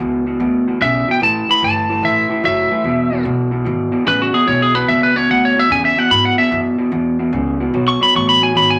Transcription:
0.00 upright bass C#2, clean electric guitar E2 B2
0.27 clean electric guitar E2 B2
0.40 upright bass D2, clean electric guitar E2 B2
0.68 clean electric guitar E2 B2
0.81 upright bass B1, clean electric guitar E2 C#3, lead electric guitar E5
1.08 clean electric guitar E2 B2, lead electric guitar G5, muted upright bass stroke
1.21 upright bass A1, clean electric guitar A2 E3, lead electric guitar A5
1.49 clean electric guitar A2 E3, lead electric guitar B5, muted upright bass stroke
1.62 upright bass G1, clean electric guitar A2 E3, lead electric guitar A5
1.89 clean electric guitar A2 E3
2.03 upright bass A1, clean electric guitar A2 E3, lead electric guitar E5
2.30 clean electric guitar A2 E3, muted upright bass stroke
2.43 upright bass F#1, clean electric guitar A2 F#3, lead electric guitar E5
2.71 clean electric guitar A2 E3, muted upright bass stroke
2.84 upright bass E1, clean electric guitar E2 B2
3.12 clean electric guitar E2 B2
3.25 upright bass B1, clean electric guitar E2 B2
3.51 clean electric guitar E2 B2
3.65 upright bass G#1, clean electric guitar E2 B2
3.92 clean electric guitar E2 B2, muted upright bass stroke
4.05 upright bass A1, clean electric guitar E2 C#3, lead electric guitar B4
4.22 lead electric guitar F#4
4.33 clean electric guitar E2 B2, lead electric guitar G#4, muted upright bass stroke
4.46 upright bass B1, clean electric guitar E2 B2, lead electric guitar C#5
4.62 lead electric guitar G#4
4.74 clean electric guitar E2 B2, lead electric guitar B4
4.88 upright bass C#2, clean electric guitar E2 B2, lead electric guitar E5
5.03 lead electric guitar B4
5.15 clean electric guitar E2 B2, lead electric guitar C#5
5.29 upright bass D2, clean electric guitar E2 B2, lead electric guitar F#5
5.45 lead electric guitar C#5
5.56 clean electric guitar E2 B2, lead electric guitar E5
5.70 clean electric guitar E2 C#3, upright bass E2, lead electric guitar G#5
5.85 lead electric guitar E5
5.97 clean electric guitar E2 B2, lead electric guitar F#5
6.10 clean electric guitar E2 B2, upright bass G#2, lead electric guitar B5
6.25 lead electric guitar F#5
6.38 clean electric guitar E2 B2, lead electric guitar E5, muted upright bass stroke
6.51 clean electric guitar E2 B2, upright bass F#2
6.78 clean electric guitar E2 B2, muted upright bass stroke
6.92 upright bass E2, clean electric guitar E2 B2
7.19 clean electric guitar E2 B2
7.33 upright bass C#2, clean electric guitar E2 C#3
7.60 clean electric guitar E2 B2
7.74 upright bass B1, clean electric guitar B2 F#3
7.88 lead electric guitar C#6
8.01 clean electric guitar B2 F#3, lead electric guitar B5
8.15 upright bass A1, clean electric guitar B2 F#3, lead electric guitar C#6
8.29 lead electric guitar B5
8.41 clean electric guitar B2 F#3, lead electric guitar G#5
8.54 upright bass G#1, clean electric guitar B2 F#3, lead electric guitar B5
8.70 lead electric guitar G#5

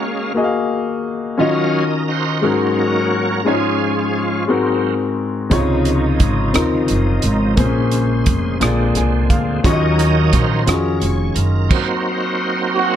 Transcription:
Already playing: tonewheel organ G#3 A#3 C#4 F5, grand piano A#3 F#4 G#4 F5
0.34 grand piano A#3 F#4 G#4 D#5
0.44 grand piano F5
1.38 grand piano D#3 C#4 F4 F#4 D#5, tonewheel organ F#3 C#4 A#4 D#5 F5
2.08 tonewheel organ D#4 F#4 C5
2.41 grand piano G#2 G#3 C#4 F#4 A#4, tonewheel organ F#3 A#3 C#4
2.79 tonewheel organ C#4 F#4 A#4
3.45 grand piano G#2 G#3 C#4 D#4 C#5, tonewheel organ F3 G#3 C#4 F4 G#4
3.53 grand piano F4
4.47 grand piano G#2 G#3 C4 F#4 A#4, tonewheel organ F#3 A#3 C4
5.50 upright bass C#2, grand piano C3 C#3 D#4 F4 C#5, tonewheel organ D#3 F3 D#4, kick, closed hi-hat
5.85 closed hi-hat
6.20 upright bass G#1, kick, closed hi-hat
6.53 upright bass D#2, grand piano C4 D#4 F4 A#4, cross-stick, closed hi-hat
6.88 upright bass F#1, closed hi-hat
7.22 upright bass G#1, closed hi-hat
7.56 upright bass A#1, grand piano A#2 A#3 C4 G#4 C5, tonewheel organ C#3 G#3, kick, closed hi-hat
7.60 grand piano C#4, tonewheel organ C5
7.91 closed hi-hat
8.26 upright bass F1, kick, closed hi-hat
8.60 upright bass A#1, grand piano A#2 A#3 F4 G#4 D5, tonewheel organ D3 G#3 C4, cross-stick, closed hi-hat
8.95 upright bass C2, grand piano G#5, cross-stick, closed hi-hat
9.30 upright bass D2, grand piano F5, kick, closed hi-hat
9.63 upright bass D#2, tonewheel organ D#3 F#3 C#4 D#4 A#4 D#5, grand piano D#3 C#4 F4 F#4 C#5, kick, closed hi-hat
9.73 grand piano D#5
9.99 closed hi-hat
10.32 upright bass A#1, tonewheel organ C5, kick, closed hi-hat
10.66 upright bass F2, grand piano C#4 F4 F#4 G#4, tonewheel organ A#4, cross-stick, closed hi-hat
11.00 upright bass F1, tonewheel organ C#5, closed hi-hat
11.35 upright bass F#1, tonewheel organ A#4, closed hi-hat
11.69 tonewheel organ F#3 A#3 C4 D#4 F#4 C5, kick, crash
12.75 horn section A#3 C4 F#4

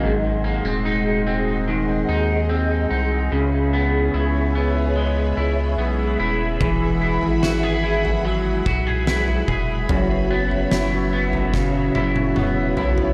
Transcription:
Already playing: clean electric guitar C#3 F#3 A#3 D#4, overdriven electric guitar D#4
0.03 sub bass G#1, clean electric guitar G#2, string machine G#4 D#5 F#5 C6
0.44 clean electric guitar A#3
0.64 sub bass D#1, clean electric guitar C4
0.85 clean electric guitar D#4
1.27 clean electric guitar C4
1.68 clean electric guitar D#3
2.09 sub bass D#2, clean electric guitar D#4
2.49 clean electric guitar C4
2.91 sub bass C2, clean electric guitar D#4
3.32 sub bass C#2, clean electric guitar C#3, string machine C#5 E5 B5
3.73 clean electric guitar B3
4.14 sub bass C#2, clean electric guitar E4
4.55 clean electric guitar B3
4.96 clean electric guitar G#3
5.37 sub bass C#2, clean electric guitar E4
5.78 sub bass B1, clean electric guitar B3
6.19 sub bass D#1, clean electric guitar E4
6.60 sub bass E1, clean electric guitar E3, string machine F#5, kick, floor tom
7.01 clean electric guitar E4
7.22 sub bass G#1, floor tom
7.43 clean electric guitar F#4, snare
7.63 clean electric guitar G#4
7.84 clean electric guitar E4
8.05 floor tom
8.25 clean electric guitar F#3
8.66 sub bass B1, clean electric guitar F#4, kick
8.87 clean electric guitar G#4
9.07 clean electric guitar E4, snare
9.28 floor tom
9.48 sub bass E1, clean electric guitar G#4, kick
9.89 sub bass F#1, clean electric guitar F#2, string machine F#4 C#5 E5, floor tom
10.31 clean electric guitar B3
10.51 floor tom
10.71 sub bass F#1, clean electric guitar E4, snare
11.13 clean electric guitar B3
11.33 floor tom
11.54 clean electric guitar C#3, kick, snare
11.95 sub bass F#1, clean electric guitar E4, high tom
12.16 high tom
12.36 sub bass E1, clean electric guitar B3, mid tom
12.77 sub bass B1, clean electric guitar E4, floor tom
12.98 floor tom

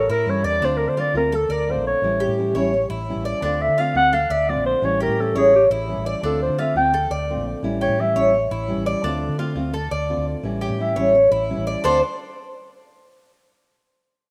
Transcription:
Already playing: clarinet A4
0.09 fingered electric bass A2, cuban tres E4, clarinet A#4
0.26 fingered electric bass G2, nylon-string guitar E3 G3 C#4 E4, clarinet C#5
0.44 fingered electric bass E2, cuban tres D5, clarinet D5
0.61 fingered electric bass D2, nylon-string guitar D3 A3 C4 F4, cuban tres D4
0.65 clarinet C5
0.77 clarinet A#4
0.88 fingered electric bass D3, clarinet C5
0.97 nylon-string guitar D3 A3 C4 F4, cuban tres F4, clarinet D5
1.14 fingered electric bass D2, nylon-string guitar A3 C4 F4, clarinet A#4
1.32 cuban tres A4, clarinet A4, muted nylon-string guitar stroke
1.49 fingered electric bass D2, clarinet A#4, cuban tres D5
1.68 nylon-string guitar D3 A3 C4 F4, clarinet C5
1.76 fingered electric bass A#1
1.87 clarinet C#5
2.02 fingered electric bass A1, nylon-string guitar E3 G3 C#4 E4
2.20 cuban tres G4
2.28 fingered electric bass A2
2.38 nylon-string guitar E3 G3 C#4 E4
2.54 fingered electric bass A1, nylon-string guitar G3 C#4 E4, cuban tres C#5
2.73 muted nylon-string guitar stroke
2.90 fingered electric bass A1, cuban tres E4
3.08 nylon-string guitar E3 G3 C#4 E4
3.16 fingered electric bass A1
3.25 cuban tres D5
3.42 fingered electric bass D2, nylon-string guitar D3 A3 C4 F4, cuban tres D4, clarinet D5
3.62 clarinet E5
3.68 fingered electric bass D3
3.78 nylon-string guitar D3 A3 C4 F4, cuban tres F4, clarinet F5
3.94 fingered electric bass D2, nylon-string guitar A3 C4 F4, clarinet F#5
4.13 cuban tres A4, clarinet F5, muted nylon-string guitar stroke
4.30 fingered electric bass D2, cuban tres D5, clarinet E5
4.48 nylon-string guitar D3 A3 C4 F4, clarinet D5
4.56 fingered electric bass A#1
4.66 clarinet C5
4.82 fingered electric bass A1, nylon-string guitar E3 G3 C#4 E4, clarinet C#5
5.00 cuban tres G4, clarinet A#4
5.08 fingered electric bass A2
5.18 nylon-string guitar E3 G3 C#4 E4, clarinet A4
5.35 fingered electric bass A1, nylon-string guitar G3 C#4 E4, clarinet G#4, cuban tres C#5
5.54 clarinet G4, muted nylon-string guitar stroke
5.70 fingered electric bass A1, cuban tres E4
5.88 nylon-string guitar E3 G3 C#4 E4
5.97 fingered electric bass A1
6.06 cuban tres D5
6.23 fingered electric bass D2, nylon-string guitar D3 A3 C4 F4, cuban tres D4, clarinet A4
6.42 clarinet C5
6.49 fingered electric bass D3
6.58 nylon-string guitar D3 A3 C4 F4, cuban tres F4, clarinet E5
6.75 fingered electric bass D2, nylon-string guitar A3 C4 F4, clarinet G5
6.93 cuban tres A4, muted nylon-string guitar stroke
7.10 fingered electric bass D2, cuban tres D5
7.29 nylon-string guitar D3 A3 C4 F4
7.36 fingered electric bass A#1
7.63 fingered electric bass A1, nylon-string guitar E3 G3 C#4 E4
7.81 cuban tres G4, clarinet C#5
7.89 fingered electric bass A2
7.99 nylon-string guitar E3 G3 C#4 E4, clarinet E5
8.16 fingered electric bass A1, nylon-string guitar G3 C#4 E4, cuban tres C#5
8.33 muted nylon-string guitar stroke
8.51 fingered electric bass A1, cuban tres E4
8.68 nylon-string guitar E3 G3 C#4 E4
8.76 fingered electric bass A1
8.86 cuban tres D5
9.03 fingered electric bass D2, nylon-string guitar D3 A3 C4 F4, cuban tres D4
9.29 fingered electric bass D3
9.38 nylon-string guitar D3 A3 C4 F4, cuban tres F4
9.55 fingered electric bass D2, nylon-string guitar A3 C4 F4
9.73 cuban tres A4, muted nylon-string guitar stroke
9.91 fingered electric bass D2, cuban tres D5
10.09 nylon-string guitar D3 A3 C4 F4
10.17 fingered electric bass D2
10.43 fingered electric bass A1, nylon-string guitar E3 G3 C#4 E4
10.61 cuban tres G4, clarinet C#5
10.70 fingered electric bass A2
10.79 nylon-string guitar E3 G3 C#4 E4, clarinet E5
10.96 fingered electric bass A1, nylon-string guitar G3 C#4 E4, cuban tres C#5
11.14 muted nylon-string guitar stroke
11.31 fingered electric bass A1, cuban tres E4
11.49 nylon-string guitar E3 G3 C#4 E4
11.57 fingered electric bass A1
11.67 cuban tres D5
11.84 fingered electric bass D2, nylon-string guitar D3 A3 C4 F4, cuban tres D4 A4 C5

